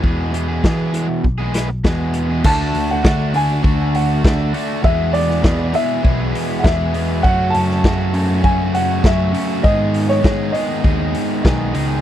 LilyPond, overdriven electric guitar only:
\new Staff \with { instrumentName = "Overdriven electric guitar" } { \clef bass \time 4/4 \key d \lydian \tempo 4 = 100 <e, b, e gis b gis'>8 <e gis b gis'>16 <e gis b gis'>16 <e, b, e gis b gis'>8 <e gis b gis'>8. <e gis b gis'>16 <e gis b gis'>8 <e, b, e gis b gis'>8. <e gis b gis'>16 | <d a d' fis'>4 <d a d' fis'>8 <d a d' fis'>8 <d a d' fis'>4 <d a d' fis'>8 <d a d' fis'>8 | <e, b, e gis b gis'>4 <e, b, e gis b gis'>8 <e, b, e gis b gis'>8 <e, b, e gis b gis'>4 <e, b, e gis b gis'>8 <e, b, e gis b gis'>8 | <fis, cis fis a cis' fis'>4 <fis, cis fis a cis' fis'>8 <fis, cis fis a cis' fis'>8 <fis, cis fis a cis' fis'>4 <fis, cis fis a cis' fis'>8 <fis, cis fis a cis' fis'>8 |
<gis, dis gis b dis' gis'>4 <gis, dis gis b dis' gis'>8 <gis, dis gis b dis' gis'>8 <gis, dis gis b dis' gis'>4 <gis, dis gis b dis' gis'>8 <gis, dis gis b dis' gis'>8 | }